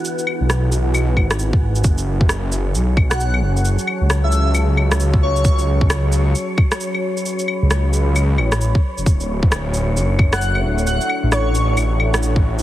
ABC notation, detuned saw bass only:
X:1
M:4/4
L:1/16
Q:"Swing 16ths" 1/4=133
K:F#m
V:1 name="Detuned saw bass" clef=bass
z3 B,,,6- B,,, G,,,3 z G,,,2 | F,,,8 B,,,6 F,,,2- | F,,, z2 C,,4- C,, C,,8- | C,,3 C,,4- C,, z8 |
z3 C,,6- C,, A,,,3 z2 F,,, | D,,,8 F,,,6 D,,,2- | D,,, z2 A,,,4- A,,, A,,,8 |]